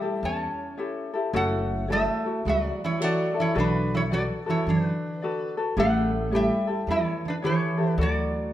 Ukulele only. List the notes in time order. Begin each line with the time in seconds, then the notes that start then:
0.02 E4 G4 A4
0.77 E4 G4 A4 C#5
1.13 E4 G4 A4
1.33 E4 F#4 A4 C#5
1.88 E4 F#4 A4 C#5
2.24 E4 F#4 A4
2.99 E4 F#4 A4 C#5
3.34 E4 F#4 A4
3.55 F#4 A4 B4 D5
4.10 F#4 A4 B4 D5
4.46 F#4 A4 B4
5.22 F#4 A4 B4 D5
5.57 F#4 A4 B4
5.77 E4 G4 A4 C#5
6.31 E4 G4 A4 C#5
6.67 E4 G4 A4
7.42 E4 G4 A4 C#5
7.77 E4 G4 A4
7.98 F#4 A4 D5